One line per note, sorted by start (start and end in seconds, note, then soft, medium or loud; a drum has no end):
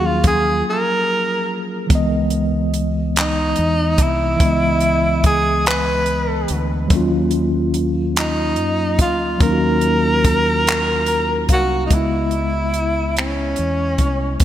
0.00 0.62 D#2 loud
0.00 1.92 F3 soft
0.00 1.88 F#3 medium
0.00 1.86 A#3 medium
0.00 1.88 C#4 medium
0.00 1.89 G#4 medium
0.06 0.25 F4 loud
0.24 0.64 G#4 loud
0.24 kick loud
0.24 closed hi-hat medium
0.70 1.57 A#4 loud
1.87 4.34 E3 medium
1.87 4.36 G#3 medium
1.87 kick loud
1.87 closed hi-hat medium
1.91 3.53 C#2 loud
1.91 4.37 B3 medium
1.91 4.39 D#5 medium
2.30 closed hi-hat soft
2.74 closed hi-hat medium
3.16 4.03 D#4 medium
3.16 clap loud
3.16 closed hi-hat medium
3.56 3.95 E2 medium
3.56 closed hi-hat medium
3.98 4.37 C2 medium
3.98 5.25 E4 loud
3.98 kick medium
3.98 closed hi-hat medium
4.37 6.84 E3 medium
4.37 6.86 G#3 medium
4.37 kick loud
4.37 closed hi-hat medium
4.41 6.45 C#2 loud
4.41 6.87 B3 medium
4.45 6.89 D#5 medium
4.80 closed hi-hat soft
5.24 5.64 G#4 loud
5.24 kick loud
5.24 closed hi-hat medium
5.66 6.56 B4 loud
5.66 clap loud
5.66 closed hi-hat medium
6.06 closed hi-hat medium
6.48 6.87 D2 medium
6.48 closed hi-hat medium
6.88 8.59 D#2 loud
6.88 9.35 F#3 medium
6.88 9.36 A#3 medium
6.88 kick loud
6.88 closed hi-hat medium
6.93 9.38 C#4 medium
6.93 9.39 F4 medium
7.31 closed hi-hat soft
7.74 closed hi-hat medium
8.16 8.97 D#4 loud
8.16 clap loud
8.16 closed hi-hat medium
8.56 9.00 F#2 medium
8.56 closed hi-hat soft
8.99 9.37 D2 medium
8.99 9.39 F4 medium
8.99 kick medium
8.99 closed hi-hat medium
9.38 11.45 D#2 loud
9.38 11.85 F#3 medium
9.38 11.86 A#3 medium
9.38 kick loud
9.38 closed hi-hat medium
9.42 11.88 C#4 medium
9.42 9.50 D#4 medium
9.42 11.46 A#4 loud
9.52 11.92 F#4 medium
9.81 closed hi-hat soft
10.24 kick loud
10.24 closed hi-hat medium
10.67 clap loud
10.67 closed hi-hat medium
11.06 11.46 A#5 medium
11.06 closed hi-hat medium
11.49 11.87 C2 medium
11.49 11.83 F#4 loud
11.49 11.88 F5 medium
11.49 kick medium
11.49 closed hi-hat medium
11.86 14.35 G#3 medium
11.86 11.95 D#4 medium
11.90 13.54 C#2 medium
11.90 14.36 B3 medium
11.90 13.17 E4 medium
11.90 14.38 D#5 medium
11.90 kick loud
11.90 closed hi-hat medium
11.96 14.39 E4 medium
12.31 closed hi-hat soft
12.74 closed hi-hat soft
13.17 14.38 C#4 medium
13.17 finger snap loud
13.17 closed hi-hat medium
13.56 13.96 E2 medium
13.56 closed hi-hat soft
13.98 14.37 C2 medium
13.98 kick medium
13.98 closed hi-hat medium
14.38 14.45 C#2 medium
14.38 14.45 G#3 medium
14.38 14.45 B3 medium
14.38 kick loud
14.38 closed hi-hat medium